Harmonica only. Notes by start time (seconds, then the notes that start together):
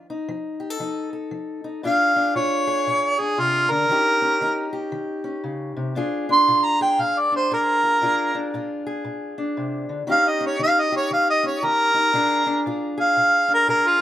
1.86 F5
2.36 C#5
3.20 G#4
3.40 F4
3.71 A#4
6.32 C6
6.65 A#5
6.82 G5
7.01 F5
7.19 D5
7.36 C5
7.54 A#4
10.11 F5
10.28 D#5
10.46 C#5
10.63 F5
10.80 D#5
10.96 C#5
11.13 F5
11.30 D#5
11.47 C#5
11.64 A#4
13.01 F5
13.54 A#4
13.70 A#4
13.87 F4